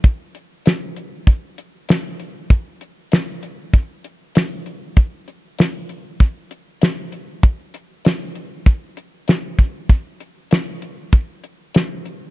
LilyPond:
\new DrumStaff \with { instrumentName = "Drums" } \drummode { \time 4/4 \tempo 4 = 97 <hh bd>8 hh8 <hh sn>8 hh8 <hh bd>8 hh8 <hh sn>8 hh8 | <hh bd>8 hh8 <hh sn>8 hh8 <hh bd>8 hh8 <hh sn>8 hh8 | <hh bd>8 hh8 <hh sn>8 hh8 <hh bd>8 hh8 <hh sn>8 hh8 | <hh bd>8 hh8 <hh sn>8 hh8 <hh bd>8 hh8 <hh sn>8 <hh bd>8 |
<hh bd>8 hh8 <hh sn>8 hh8 <hh bd>8 hh8 <hh sn>8 hh8 | }